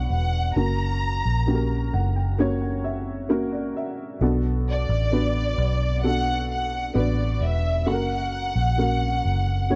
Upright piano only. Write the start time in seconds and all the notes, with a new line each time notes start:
Already playing: B3 D4 F#4 B4 C#5
0.56 A#3 C#4 F#4 A#4
1.47 A#3 C#4 F#4 G4
1.55 A#4
1.93 F#5
2.16 G5
2.39 A#3 C#4 F#4 C#5 F#5
2.62 F#5
2.84 E5
3.29 A#3 C#4 F#4 A#4 F#5
3.53 D5
3.76 E5
4.21 B2 B3 D4 F#4 A4
5.12 B3 D4 F#4 B4
6.04 B3 D4 F#4 A4
6.94 B3 D4 F#4 B4
7.86 A#3 C#4 F#4 A4
7.93 A#4
8.78 A#3 C#4 F#4 A#4
9.70 A#3 C#4 F#4 C#5